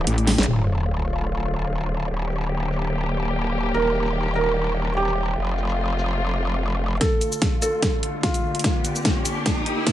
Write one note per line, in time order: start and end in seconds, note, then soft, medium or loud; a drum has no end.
0.00 0.46 E3 medium
0.00 0.46 A3 medium
0.00 0.40 D4 loud
0.00 0.44 G4 medium
0.07 0.37 A1 loud
0.07 closed hi-hat medium
0.18 closed hi-hat soft
0.27 snare medium
0.27 open hi-hat loud
0.38 0.46 A1 loud
0.38 snare medium
0.38 closed hi-hat medium
0.43 closed hi-hat medium
0.48 2.09 D1 medium
0.48 3.71 D3 medium
0.48 2.09 A3 medium
0.48 2.09 F4 medium
0.48 crash medium
0.48 sub drop medium
0.68 shaker soft
0.79 shaker medium
1.09 shaker medium
1.81 shaker soft
2.11 3.73 D1 medium
2.11 5.34 A#3 medium
2.11 5.34 G4 medium
2.32 shaker soft
2.42 shaker medium
2.72 shaker medium
3.74 5.36 D#1 medium
3.74 5.36 D#3 medium
3.74 4.28 A#4 medium
3.95 shaker soft
4.06 shaker medium
4.35 4.89 A#4 medium
4.35 shaker medium
4.97 6.93 G4 medium
5.08 shaker soft
5.38 6.99 F1 medium
5.38 6.99 C3 medium
5.38 6.99 A3 medium
5.38 6.99 F4 medium
5.58 shaker soft
5.69 shaker medium
5.99 shaker medium
7.01 9.92 D3 medium
7.01 8.63 A3 medium
7.01 8.63 F4 medium
7.01 7.55 A4 medium
7.01 kick medium
7.01 snare soft
7.01 closed hi-hat medium
7.01 riser medium
7.21 closed hi-hat medium
7.21 shaker medium
7.32 shaker medium
7.42 kick medium
7.42 snare soft
7.42 closed hi-hat medium
7.62 8.16 A4 medium
7.62 closed hi-hat medium
7.62 shaker medium
7.82 kick medium
7.82 snare medium
7.82 closed hi-hat medium
8.03 closed hi-hat medium
8.23 9.92 F4 medium
8.23 kick medium
8.23 snare medium
8.23 closed hi-hat medium
8.34 closed hi-hat soft
8.34 shaker medium
8.55 closed hi-hat soft
8.59 closed hi-hat medium
8.64 9.92 A#3 medium
8.64 9.92 G4 medium
8.64 kick medium
8.64 snare medium
8.64 closed hi-hat medium
8.85 closed hi-hat medium
8.85 shaker soft
8.96 shaker medium
9.05 kick loud
9.05 snare medium
9.05 closed hi-hat medium
9.25 closed hi-hat medium
9.25 shaker medium
9.46 kick loud
9.46 snare medium
9.46 closed hi-hat medium
9.66 closed hi-hat medium
9.87 kick loud
9.87 snare medium
9.87 closed hi-hat medium